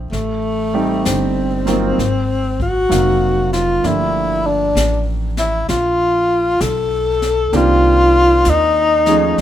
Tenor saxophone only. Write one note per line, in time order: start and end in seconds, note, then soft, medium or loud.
0.11 1.07 A3 medium
1.05 2.59 C4 medium
2.62 3.49 F#4 medium
3.53 3.87 F4 medium
3.86 4.48 E4 medium
4.47 5.02 D4 medium
5.39 5.67 E4 medium
5.69 6.63 F4 medium
6.61 7.58 A4 medium
7.56 8.51 F4 medium
8.49 9.41 D#4 medium